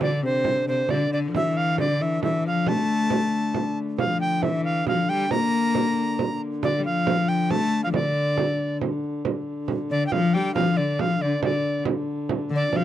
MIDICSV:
0, 0, Header, 1, 5, 480
1, 0, Start_track
1, 0, Key_signature, -1, "minor"
1, 0, Tempo, 441176
1, 15, Time_signature, 3, 2, 24, 8
1, 7215, Tempo, 435414
1, 14064, End_track
2, 0, Start_track
2, 0, Title_t, "Recorder"
2, 0, Program_c, 0, 74
2, 27, Note_on_c, 0, 74, 93
2, 247, Note_off_c, 0, 74, 0
2, 267, Note_on_c, 0, 72, 96
2, 712, Note_off_c, 0, 72, 0
2, 744, Note_on_c, 0, 72, 86
2, 985, Note_on_c, 0, 74, 88
2, 1001, Note_off_c, 0, 72, 0
2, 1222, Note_off_c, 0, 74, 0
2, 1228, Note_on_c, 0, 74, 81
2, 1293, Note_off_c, 0, 74, 0
2, 1477, Note_on_c, 0, 76, 95
2, 1707, Note_on_c, 0, 77, 93
2, 1723, Note_off_c, 0, 76, 0
2, 1947, Note_off_c, 0, 77, 0
2, 1955, Note_on_c, 0, 74, 88
2, 2198, Note_on_c, 0, 76, 87
2, 2215, Note_off_c, 0, 74, 0
2, 2424, Note_off_c, 0, 76, 0
2, 2430, Note_on_c, 0, 76, 85
2, 2652, Note_off_c, 0, 76, 0
2, 2688, Note_on_c, 0, 77, 84
2, 2919, Note_on_c, 0, 81, 95
2, 2935, Note_off_c, 0, 77, 0
2, 4114, Note_off_c, 0, 81, 0
2, 4341, Note_on_c, 0, 77, 81
2, 4568, Note_off_c, 0, 77, 0
2, 4576, Note_on_c, 0, 79, 82
2, 4813, Note_on_c, 0, 76, 76
2, 4829, Note_off_c, 0, 79, 0
2, 5048, Note_off_c, 0, 76, 0
2, 5054, Note_on_c, 0, 77, 84
2, 5283, Note_off_c, 0, 77, 0
2, 5306, Note_on_c, 0, 77, 87
2, 5541, Note_on_c, 0, 79, 93
2, 5557, Note_off_c, 0, 77, 0
2, 5778, Note_on_c, 0, 82, 98
2, 5794, Note_off_c, 0, 79, 0
2, 6976, Note_off_c, 0, 82, 0
2, 7217, Note_on_c, 0, 74, 84
2, 7442, Note_off_c, 0, 74, 0
2, 7461, Note_on_c, 0, 77, 101
2, 7936, Note_on_c, 0, 79, 94
2, 7953, Note_off_c, 0, 77, 0
2, 8179, Note_on_c, 0, 81, 101
2, 8196, Note_off_c, 0, 79, 0
2, 8539, Note_off_c, 0, 81, 0
2, 8546, Note_on_c, 0, 77, 85
2, 8600, Note_off_c, 0, 77, 0
2, 8661, Note_on_c, 0, 74, 89
2, 9582, Note_off_c, 0, 74, 0
2, 10828, Note_on_c, 0, 74, 91
2, 10996, Note_off_c, 0, 74, 0
2, 11001, Note_on_c, 0, 79, 69
2, 11060, Note_on_c, 0, 77, 100
2, 11077, Note_off_c, 0, 79, 0
2, 11300, Note_on_c, 0, 79, 102
2, 11316, Note_off_c, 0, 77, 0
2, 11522, Note_off_c, 0, 79, 0
2, 11529, Note_on_c, 0, 77, 105
2, 11778, Note_on_c, 0, 74, 93
2, 11794, Note_off_c, 0, 77, 0
2, 12036, Note_on_c, 0, 77, 101
2, 12052, Note_off_c, 0, 74, 0
2, 12270, Note_on_c, 0, 74, 89
2, 12287, Note_off_c, 0, 77, 0
2, 12507, Note_off_c, 0, 74, 0
2, 12516, Note_on_c, 0, 74, 85
2, 12956, Note_off_c, 0, 74, 0
2, 13745, Note_on_c, 0, 74, 88
2, 13976, Note_on_c, 0, 77, 99
2, 13993, Note_off_c, 0, 74, 0
2, 14064, Note_off_c, 0, 77, 0
2, 14064, End_track
3, 0, Start_track
3, 0, Title_t, "Viola da gamba"
3, 0, Program_c, 1, 42
3, 3, Note_on_c, 1, 50, 79
3, 246, Note_on_c, 1, 48, 83
3, 263, Note_off_c, 1, 50, 0
3, 722, Note_off_c, 1, 48, 0
3, 729, Note_on_c, 1, 48, 78
3, 958, Note_off_c, 1, 48, 0
3, 978, Note_on_c, 1, 50, 80
3, 1195, Note_off_c, 1, 50, 0
3, 1201, Note_on_c, 1, 50, 78
3, 1391, Note_on_c, 1, 53, 62
3, 1408, Note_off_c, 1, 50, 0
3, 1454, Note_on_c, 1, 52, 81
3, 1470, Note_off_c, 1, 53, 0
3, 1944, Note_on_c, 1, 50, 81
3, 1960, Note_off_c, 1, 52, 0
3, 2180, Note_on_c, 1, 52, 79
3, 2196, Note_off_c, 1, 50, 0
3, 2420, Note_off_c, 1, 52, 0
3, 2427, Note_on_c, 1, 52, 75
3, 2670, Note_on_c, 1, 53, 75
3, 2686, Note_off_c, 1, 52, 0
3, 2916, Note_on_c, 1, 57, 80
3, 2932, Note_off_c, 1, 53, 0
3, 4113, Note_off_c, 1, 57, 0
3, 4346, Note_on_c, 1, 53, 73
3, 4816, Note_on_c, 1, 52, 79
3, 4832, Note_off_c, 1, 53, 0
3, 5301, Note_off_c, 1, 52, 0
3, 5319, Note_on_c, 1, 53, 74
3, 5536, Note_off_c, 1, 53, 0
3, 5557, Note_on_c, 1, 55, 84
3, 5774, Note_off_c, 1, 55, 0
3, 5790, Note_on_c, 1, 58, 92
3, 6938, Note_off_c, 1, 58, 0
3, 7218, Note_on_c, 1, 50, 74
3, 7392, Note_on_c, 1, 55, 57
3, 7409, Note_off_c, 1, 50, 0
3, 7457, Note_on_c, 1, 53, 83
3, 7474, Note_off_c, 1, 55, 0
3, 8187, Note_on_c, 1, 57, 92
3, 8203, Note_off_c, 1, 53, 0
3, 8547, Note_off_c, 1, 57, 0
3, 8558, Note_on_c, 1, 53, 74
3, 8661, Note_off_c, 1, 53, 0
3, 8668, Note_on_c, 1, 50, 80
3, 9585, Note_off_c, 1, 50, 0
3, 10826, Note_on_c, 1, 50, 80
3, 11051, Note_off_c, 1, 50, 0
3, 11068, Note_on_c, 1, 53, 94
3, 11309, Note_on_c, 1, 55, 90
3, 11325, Note_off_c, 1, 53, 0
3, 11545, Note_off_c, 1, 55, 0
3, 11552, Note_on_c, 1, 53, 89
3, 11791, Note_on_c, 1, 50, 79
3, 11807, Note_off_c, 1, 53, 0
3, 12016, Note_on_c, 1, 53, 89
3, 12033, Note_off_c, 1, 50, 0
3, 12261, Note_off_c, 1, 53, 0
3, 12270, Note_on_c, 1, 50, 74
3, 12491, Note_off_c, 1, 50, 0
3, 12510, Note_on_c, 1, 50, 70
3, 12952, Note_off_c, 1, 50, 0
3, 13685, Note_on_c, 1, 50, 92
3, 13914, Note_off_c, 1, 50, 0
3, 13926, Note_on_c, 1, 53, 91
3, 14064, Note_off_c, 1, 53, 0
3, 14064, End_track
4, 0, Start_track
4, 0, Title_t, "Hurdy-gurdy"
4, 0, Program_c, 2, 110
4, 0, Note_on_c, 2, 50, 67
4, 4352, Note_off_c, 2, 50, 0
4, 4352, Note_on_c, 2, 50, 65
4, 10117, Note_off_c, 2, 50, 0
4, 10117, Note_on_c, 2, 50, 74
4, 14064, Note_off_c, 2, 50, 0
4, 14064, End_track
5, 0, Start_track
5, 0, Title_t, "Frame drum"
5, 8, Note_on_c, 9, 64, 81
5, 117, Note_off_c, 9, 64, 0
5, 485, Note_on_c, 9, 64, 76
5, 594, Note_off_c, 9, 64, 0
5, 737, Note_on_c, 9, 64, 25
5, 846, Note_off_c, 9, 64, 0
5, 966, Note_on_c, 9, 64, 76
5, 1075, Note_off_c, 9, 64, 0
5, 1464, Note_on_c, 9, 64, 83
5, 1573, Note_off_c, 9, 64, 0
5, 1938, Note_on_c, 9, 64, 81
5, 2047, Note_off_c, 9, 64, 0
5, 2187, Note_on_c, 9, 64, 26
5, 2296, Note_off_c, 9, 64, 0
5, 2423, Note_on_c, 9, 64, 79
5, 2531, Note_off_c, 9, 64, 0
5, 2900, Note_on_c, 9, 64, 93
5, 3008, Note_off_c, 9, 64, 0
5, 3376, Note_on_c, 9, 64, 84
5, 3485, Note_off_c, 9, 64, 0
5, 3856, Note_on_c, 9, 64, 80
5, 3964, Note_off_c, 9, 64, 0
5, 4336, Note_on_c, 9, 64, 86
5, 4444, Note_off_c, 9, 64, 0
5, 4817, Note_on_c, 9, 64, 84
5, 4926, Note_off_c, 9, 64, 0
5, 5063, Note_on_c, 9, 64, 26
5, 5172, Note_off_c, 9, 64, 0
5, 5294, Note_on_c, 9, 64, 84
5, 5403, Note_off_c, 9, 64, 0
5, 5775, Note_on_c, 9, 64, 85
5, 5884, Note_off_c, 9, 64, 0
5, 6254, Note_on_c, 9, 64, 84
5, 6362, Note_off_c, 9, 64, 0
5, 6502, Note_on_c, 9, 64, 27
5, 6611, Note_off_c, 9, 64, 0
5, 6735, Note_on_c, 9, 64, 84
5, 6843, Note_off_c, 9, 64, 0
5, 7212, Note_on_c, 9, 64, 91
5, 7322, Note_off_c, 9, 64, 0
5, 7697, Note_on_c, 9, 64, 91
5, 7807, Note_off_c, 9, 64, 0
5, 7940, Note_on_c, 9, 64, 26
5, 8050, Note_off_c, 9, 64, 0
5, 8178, Note_on_c, 9, 64, 82
5, 8288, Note_off_c, 9, 64, 0
5, 8655, Note_on_c, 9, 64, 90
5, 8765, Note_off_c, 9, 64, 0
5, 9137, Note_on_c, 9, 64, 85
5, 9248, Note_off_c, 9, 64, 0
5, 9383, Note_on_c, 9, 64, 24
5, 9493, Note_off_c, 9, 64, 0
5, 9622, Note_on_c, 9, 64, 83
5, 9732, Note_off_c, 9, 64, 0
5, 9867, Note_on_c, 9, 64, 27
5, 9978, Note_off_c, 9, 64, 0
5, 10101, Note_on_c, 9, 64, 89
5, 10211, Note_off_c, 9, 64, 0
5, 10576, Note_on_c, 9, 64, 82
5, 10686, Note_off_c, 9, 64, 0
5, 11060, Note_on_c, 9, 64, 89
5, 11170, Note_off_c, 9, 64, 0
5, 11312, Note_on_c, 9, 64, 31
5, 11422, Note_off_c, 9, 64, 0
5, 11544, Note_on_c, 9, 64, 92
5, 11654, Note_off_c, 9, 64, 0
5, 12023, Note_on_c, 9, 64, 91
5, 12133, Note_off_c, 9, 64, 0
5, 12500, Note_on_c, 9, 64, 96
5, 12610, Note_off_c, 9, 64, 0
5, 12744, Note_on_c, 9, 64, 34
5, 12854, Note_off_c, 9, 64, 0
5, 12973, Note_on_c, 9, 64, 94
5, 13083, Note_off_c, 9, 64, 0
5, 13457, Note_on_c, 9, 64, 88
5, 13567, Note_off_c, 9, 64, 0
5, 13935, Note_on_c, 9, 64, 80
5, 14045, Note_off_c, 9, 64, 0
5, 14064, End_track
0, 0, End_of_file